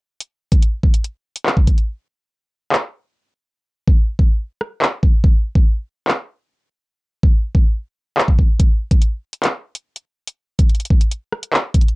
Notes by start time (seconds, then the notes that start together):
0.20 closed hi-hat
0.52 kick, closed hi-hat
0.62 closed hi-hat
0.83 kick
0.94 closed hi-hat
1.04 closed hi-hat
1.36 closed hi-hat
1.46 clap
1.57 kick
1.67 kick, closed hi-hat
1.78 closed hi-hat
2.72 clap
3.88 kick
4.19 kick
4.61 cross-stick
4.82 clap
5.03 kick
5.24 kick
5.55 kick
6.08 clap
7.23 kick
7.55 kick
8.18 clap
8.28 kick
8.39 kick
8.60 kick, closed hi-hat
8.91 kick, closed hi-hat
9.02 closed hi-hat
9.33 closed hi-hat
9.44 clap, closed hi-hat
9.75 closed hi-hat
9.96 closed hi-hat
10.27 closed hi-hat
10.59 kick, closed hi-hat
10.69 closed hi-hat
10.75 closed hi-hat
10.80 closed hi-hat
10.85 closed hi-hat
10.90 kick
11.01 closed hi-hat
11.11 closed hi-hat
11.32 cross-stick
11.43 closed hi-hat
11.53 clap
11.74 kick, closed hi-hat
11.81 closed hi-hat
11.88 closed hi-hat